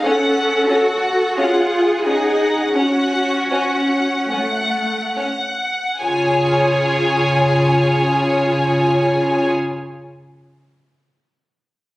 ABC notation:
X:1
M:4/4
L:1/8
Q:1/4=40
K:Db
V:1 name="Violin section"
g g g g g g g g | a8 |]
V:2 name="Viola section"
=A2 _A2 G2 z2 | F8 |]
V:3 name="Cello section"
D G F E D2 =A, z | D,8 |]
V:4 name="Violin section"
D D D D D D D D | [Ad]8 |]